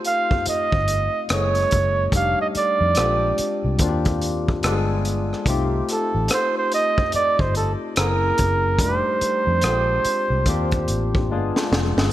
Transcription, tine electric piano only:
0.00 1.25 A3 medium
0.00 1.25 C4 medium
0.00 1.26 D#4 medium
0.00 1.26 F4 medium
0.00 1.27 G4 medium
1.30 2.13 G#3 medium
1.30 2.13 A#3 medium
1.30 2.13 C#4 medium
1.30 2.13 E4 soft
1.30 2.14 G#4 medium
2.13 2.96 G3 medium
2.13 2.96 A3 medium
2.13 2.96 D4 medium
2.13 2.97 D#4 medium
2.13 2.97 G4 medium
2.96 3.79 G#3 medium
2.96 3.79 C4 medium
2.96 3.79 D4 medium
2.96 3.80 F4 medium
2.96 3.80 G4 medium
3.79 4.63 A#3 medium
3.79 4.63 C4 medium
3.79 4.63 D4 medium
3.79 4.64 F4 medium
3.79 3.89 F#4 medium
3.88 4.65 G4 medium
4.63 5.46 G#3 medium
4.63 5.47 B3 medium
4.63 5.47 D4 medium
4.63 5.47 F4 medium
4.63 4.72 G4 medium
4.72 5.51 G#4 medium
5.45 7.91 A3 medium
5.45 7.92 C4 medium
5.45 7.93 D#4 medium
5.45 7.93 F4 medium
5.50 7.94 G4 medium
7.97 8.80 A#3 medium
7.97 8.80 C4 medium
7.97 8.80 C#4 medium
7.97 8.81 E4 soft
7.97 8.81 G#4 medium
8.80 9.63 G3 medium
8.80 9.63 A3 medium
8.80 9.64 D4 soft
8.80 9.64 D#4 medium
8.80 8.89 F4 medium
8.89 9.65 G4 medium
9.64 10.47 G#3 medium
9.64 10.46 C4 medium
9.64 10.47 D4 medium
9.64 10.47 F4 medium
9.64 10.48 G4 medium
10.47 11.30 A#3 medium
10.47 11.30 C4 medium
10.47 11.30 D4 medium
10.47 11.31 F4 medium
10.47 11.31 G4 medium
11.30 12.12 G#3 medium
11.30 11.38 A#3 soft
11.30 12.12 D4 medium
11.30 12.12 F4 medium
11.30 12.12 G#4 medium
11.37 12.12 B3 medium

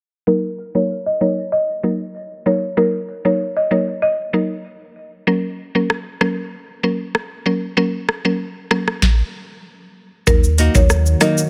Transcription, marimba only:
0.27 0.39 A#4 medium
0.75 0.86 C#5 medium
1.06 1.17 D#5 medium
1.21 1.33 C#5 medium
1.52 1.97 D#5 loud
2.46 2.58 C#5 medium
2.77 2.89 A#4 medium
3.25 3.36 C#5 medium
3.57 3.67 D#5 medium
3.71 3.83 C#5 medium
4.02 4.47 D#5 loud
10.27 10.39 A#4 loud
10.75 10.86 C#5 medium
11.21 11.33 D#5 medium

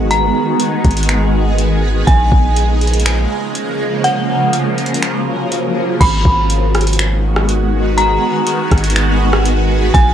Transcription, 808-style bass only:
0.00 0.31 G#1 loud
0.85 2.04 G#1 loud
2.07 2.31 A#1 loud
2.32 3.26 A#1 loud
6.01 6.24 G#1 loud
6.25 8.18 G#1 loud
8.72 9.90 G#1 loud
9.95 10.14 A#1 loud

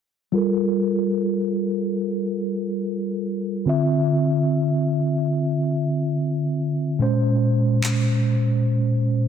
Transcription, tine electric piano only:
0.32 3.62 G3 medium
0.32 3.63 F4 medium
0.32 3.63 A4 medium
0.32 3.64 A#4 medium
3.66 6.95 D3 medium
3.66 6.96 C4 medium
3.66 6.97 F4 medium
3.66 6.97 E5 medium
6.99 9.28 A#2 medium
6.99 9.28 G#3 medium
6.99 9.28 C#4 medium
6.99 9.28 C5 medium

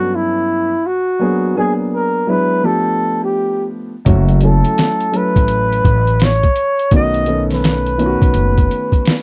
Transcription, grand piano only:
0.00 0.70 G2 medium
0.00 0.70 F#3 medium
0.00 0.71 B3 medium
0.00 0.71 C#4 medium
0.00 0.71 D4 medium
0.00 0.71 A4 medium
1.19 1.52 F#3 medium
1.19 1.53 A#3 medium
1.19 1.53 B3 medium
1.19 1.53 D4 medium
1.19 1.53 G#4 medium
1.55 2.20 F#3 medium
1.55 2.21 A#3 medium
1.55 2.21 B3 medium
1.55 2.21 D4 medium
1.55 2.21 G#4 medium
2.27 2.63 F#3 medium
2.27 2.63 G#3 medium
2.27 2.62 B3 medium
2.27 2.63 D4 medium
2.27 2.64 E4 medium
2.62 3.92 F3 medium
2.62 3.92 A3 medium
2.62 3.92 B3 medium
2.62 3.93 D4 medium
2.62 3.93 G4 medium
4.05 4.38 F#3 medium
4.05 4.38 A3 medium
4.05 4.38 C#4 medium
4.05 4.39 E4 medium
4.05 4.39 F#4 medium
4.41 5.06 F#3 medium
4.41 5.06 A3 medium
4.41 5.07 C#4 medium
4.41 5.07 E4 medium
4.41 5.07 A4 medium
5.12 6.41 F#3 medium
5.12 6.42 A3 medium
5.12 6.42 C#4 medium
5.12 6.42 E4 medium
5.12 6.42 A4 medium
6.91 7.24 D#3 medium
6.91 7.24 A3 medium
6.91 7.24 B3 medium
6.91 7.24 C#4 medium
6.91 7.25 F#4 medium
7.26 7.92 D#3 medium
7.26 7.92 A3 medium
7.26 7.92 B3 medium
7.26 7.93 C#4 medium
7.26 7.93 A4 medium
7.98 9.22 D#3 medium
7.98 9.22 A3 medium
7.98 9.22 B3 medium
7.98 9.22 C#4 medium
7.98 8.08 F4 medium
8.06 9.22 F#4 medium

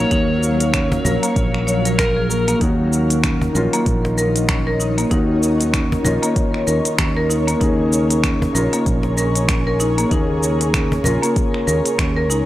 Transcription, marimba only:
0.11 0.29 D#4 medium
0.74 1.04 C#4 medium
1.05 1.22 A#4 medium
1.23 1.66 A#3 medium
1.67 1.85 C#5 medium
1.85 1.97 A#4 medium
1.98 2.16 A#4 medium
2.17 2.29 G#4 medium
2.30 2.47 A#3 medium
2.48 2.60 A#3 medium
2.61 2.78 D#4 medium
3.24 3.54 C#4 medium
3.55 3.72 A#4 medium
3.73 4.16 A#3 medium
4.18 4.28 A#4 medium
4.49 4.65 C#4 medium
4.67 4.79 A#4 medium
4.80 4.96 D#4 medium
4.98 5.10 A#3 medium
5.11 5.28 D#4 medium
5.73 6.04 C#4 medium
6.05 6.22 A#4 medium
6.23 6.66 A#3 medium
6.67 6.78 A#4 medium
6.99 7.15 C#4 medium
7.17 7.29 A#4 medium
7.30 7.46 D#4 medium
7.48 7.60 A#3 loud
7.61 7.78 D#4 medium
8.23 8.54 C#4 medium
8.55 8.72 A#4 medium
8.73 9.16 A#3 medium
9.18 9.28 A#4 medium
9.49 9.65 C#4 medium
9.67 9.79 A#4 medium
9.80 9.96 D#4 medium
9.98 10.10 A#3 loud
10.11 10.29 D#4 medium
10.74 11.04 C#4 medium
11.05 11.22 A#4 medium
11.23 11.66 A#3 loud
11.67 11.78 A#4 medium
11.98 12.15 C#4 medium
12.17 12.29 A#4 medium
12.30 12.46 D#4 medium

